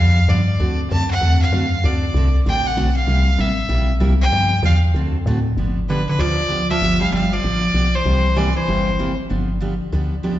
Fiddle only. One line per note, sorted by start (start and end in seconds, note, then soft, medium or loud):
0.00 0.31 F5 loud
0.29 0.80 D5 medium
0.91 1.09 A5 medium
1.11 1.40 F#5 loud
1.42 1.87 F5 medium
1.85 2.35 D5 medium
2.49 2.68 G5 loud
2.67 2.96 F#5 medium
2.97 3.42 F5 loud
3.40 3.91 E5 medium
4.21 4.61 G5 loud
4.65 4.77 F5 medium
5.89 6.07 B4 medium
6.09 6.21 B4 medium
6.20 6.70 D5 loud
6.70 6.99 E5 loud
7.01 7.12 F5 loud
7.14 7.35 F5 loud
7.33 7.97 D5 loud
7.95 8.39 C5 loud
8.37 8.56 D5 medium
8.56 9.15 C5 medium